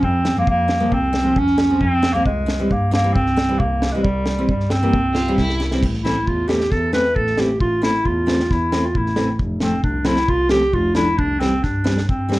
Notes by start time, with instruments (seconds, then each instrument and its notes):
0.03 double bass F2, clarinet C4, kick
0.25 muted nylon-string guitar stroke, snare
0.35 double bass F2, nylon-string guitar F3 G#3 C4, clarinet A#3
0.47 double bass F2, clarinet A#3, kick
0.68 muted nylon-string guitar stroke, snare
0.80 nylon-string guitar F3 G#3 A#3
0.92 double bass C2, clarinet C4, kick
1.13 muted nylon-string guitar stroke, snare
1.23 nylon-string guitar F3 G#3 C4
1.36 double bass F2, clarinet C#4, kick
1.47 snare
1.58 clarinet C#4, muted nylon-string guitar stroke, snare
1.70 nylon-string guitar F3 G#3 C4
1.81 double bass F2, clarinet C4, kick
2.02 muted nylon-string guitar stroke, snare
2.13 double bass C#2, nylon-string guitar F3 G#3 C4, clarinet A#3
2.25 double bass C2, clarinet G#3, kick
2.46 muted nylon-string guitar stroke, snare
2.59 nylon-string guitar E3 G3 C4
2.71 double bass G2, clarinet A#3, kick
2.92 clarinet A#3, muted nylon-string guitar stroke, snare
3.03 nylon-string guitar E3 G3 C4
3.14 double bass C2, clarinet C4, kick
3.27 snare
3.37 muted nylon-string guitar stroke, snare
3.49 nylon-string guitar E3 G3 C4
3.59 double bass C2, clarinet A#3, kick
3.82 muted nylon-string guitar stroke, snare
3.92 double bass C2, nylon-string guitar E3 G3 C4, clarinet G#3
4.03 double bass C2, clarinet G3, kick
4.26 muted nylon-string guitar stroke, snare
4.38 nylon-string guitar E3 G3 C4
4.49 double bass G2, clarinet G3, kick
4.60 snare
4.70 clarinet C4, muted nylon-string guitar stroke, snare
4.83 nylon-string guitar E3 G3 A#3
4.94 double bass C2, kick
5.13 violin F4, muted nylon-string guitar stroke, snare
5.28 nylon-string guitar E3 G3 C4
5.37 double bass C2, violin E4, kick, snare
5.49 snare
5.60 muted nylon-string guitar stroke, snare
5.70 double bass C2, nylon-string guitar E3 G3 C4, snare
5.83 double bass A1, kick, crash
5.94 snare
6.03 nylon-string guitar E3 A3 C4, clarinet E4, snare
6.27 double bass E2, clarinet F4, kick
6.47 nylon-string guitar E3 A3 C4, clarinet G4, snare
6.60 snare
6.71 double bass E2, clarinet A4, kick, snare
6.93 nylon-string guitar E3 A3 C4, clarinet B4, snare
7.05 snare
7.15 double bass A1, clarinet A4, kick
7.27 snare
7.37 nylon-string guitar E3 A3 C4, clarinet G4, snare
7.60 double bass A1, clarinet F4, kick
7.81 nylon-string guitar E3 A3 C4, clarinet E4, snare
7.94 snare
8.05 double bass E2, clarinet F4, kick
8.26 nylon-string guitar E3 A3 C4, snare
8.39 snare
8.50 double bass E2, clarinet E4, kick, snare
8.72 nylon-string guitar E3 A3 C4, snare
8.85 clarinet F4
8.95 double bass A1, clarinet E4, kick
9.06 snare
9.16 nylon-string guitar E3 A3 C4, snare
9.39 double bass F1, kick
9.60 nylon-string guitar F3 A3 C4, clarinet C4, snare
9.83 double bass C2, clarinet D4, kick
10.05 nylon-string guitar F3 A3 C4, clarinet E4, snare
10.16 snare
10.28 double bass C2, clarinet F4, kick
10.49 nylon-string guitar F3 A3 C4, clarinet G4, snare
10.62 snare
10.73 double bass F1, clarinet F4, kick
10.95 nylon-string guitar F3 A3 D4, clarinet E4, snare
11.18 double bass C2, clarinet D4, kick
11.39 nylon-string guitar E3 G3 C4, clarinet C4, snare
11.63 double bass G2, clarinet D4, kick, snare
11.84 nylon-string guitar E3 G3 C4, snare
11.97 snare
12.09 double bass G2, clarinet C4, kick
12.28 nylon-string guitar E3 G3 C4, snare